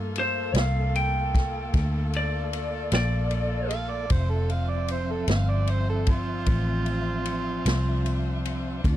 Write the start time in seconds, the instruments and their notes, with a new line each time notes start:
Already playing: fingered electric bass G2, horn section A3 A#3 F4 A4, tonewheel organ A#3 A4 F5
0.16 lead electric guitar C5, ride
0.54 fingered electric bass C2, snare, ride
0.58 lead electric guitar F5
0.95 lead electric guitar G5, ride
1.35 kick, snare, ride
1.74 fingered electric bass D2, kick, snare, ride
2.13 lead electric guitar D5, ride
2.53 ride
2.92 fingered electric bass A#1, lead electric guitar D5, snare, ride
3.31 ride
3.70 harmonica F5, ride
3.91 harmonica D5
4.10 fingered electric bass F1, tonewheel organ F3 C4 E5, horn section C4 D4 C5, harmonica C5, kick, ride
4.30 harmonica A4
4.50 harmonica F5, ride
4.70 harmonica D5
4.88 harmonica C5, ride
5.11 harmonica A4
5.28 fingered electric bass G1, harmonica F5, snare, ride
5.50 harmonica D5
5.67 harmonica C5, ride
5.90 harmonica A4
6.07 harmonica F4, kick, ride
6.46 fingered electric bass A1, kick, ride
6.86 ride
7.25 ride
7.66 fingered electric bass C2, snare, ride
8.06 ride
8.45 ride
8.84 fingered electric bass D2, tonewheel organ C4 D4 F4, horn section D4 D5, kick, ride